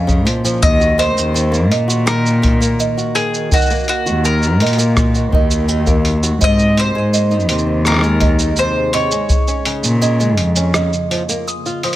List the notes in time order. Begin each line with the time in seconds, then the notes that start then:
Already playing: F2 F3 C#4 G#4 A#4 F5
0.07 C#3, kick, shaker
0.25 A#2 F3, closed hi-hat
0.44 F3, shaker
0.62 D#2 D#3 D#5, kick, shaker
0.80 F#4, shaker
0.98 D#3 C5 D#5, closed hi-hat
1.05 F#4
1.16 D#2 A#3, shaker
1.34 D#3, shaker
1.52 A#3, shaker
1.71 A#2 D#5, closed hi-hat
1.88 F#4, shaker
2.06 D#3 A#4, cross-stick, shaker
2.26 shaker
2.42 D#3, kick, closed hi-hat
2.60 A#3, shaker
2.80 D#5, shaker
2.97 F#4, shaker
3.15 D#3 G#4, closed hi-hat
3.34 shaker
3.52 D#3 F#4 D#5, kick, shaker
3.56 shaker
3.61 shaker
3.66 shaker
3.70 A#3, shaker
3.74 shaker
3.79 shaker
3.83 shaker
3.88 F#4, closed hi-hat
4.06 D#2 F#4, shaker
4.24 D#3 A#4, shaker
4.42 shaker
4.60 A#2 D#3 D#5, closed hi-hat
4.67 closed hi-hat
4.73 closed hi-hat
4.78 A#3, shaker
4.97 kick, cross-stick, shaker
5.15 F#4, shaker
5.32 D#2 D#3 D#5, kick
5.51 shaker
5.68 D#3, shaker
5.86 A#3, kick, shaker
6.05 closed hi-hat
6.23 F#4, shaker
6.41 G#2 C3 D#5, kick, shaker
6.59 shaker
6.63 D#4
6.77 C3 C5, closed hi-hat
6.94 G#2 G#3
7.00 G#3
7.14 D#5, shaker
7.31 D#4, shaker
7.40 shaker
7.49 D#2 C3, closed hi-hat, shaker
7.58 shaker
7.72 G#4
7.85 C3 A#4, cross-stick, shaker
7.88 cross-stick
7.90 cross-stick
7.92 cross-stick
7.94 cross-stick
7.96 cross-stick
7.99 cross-stick
8.01 G#3, cross-stick, shaker
8.20 D#5, kick, closed hi-hat
8.39 D#4, shaker
8.56 C3 C5, shaker
8.93 C3 C#5 D#5, closed hi-hat
9.11 G#3, shaker
9.29 C#3, kick, shaker
9.47 C#4, shaker
9.61 A#3
9.65 C#3, closed hi-hat
9.84 A#2 F4, shaker
10.01 C#3 D#5, shaker
10.20 G#3, shaker
10.37 F2, closed hi-hat
10.56 C#4, shaker
10.74 C#3 D#5, cross-stick, shaker
10.93 shaker
11.11 F3, closed hi-hat
11.29 A#3, shaker
11.48 D#6, shaker
11.66 F4, shaker
11.83 F3 D#6, closed hi-hat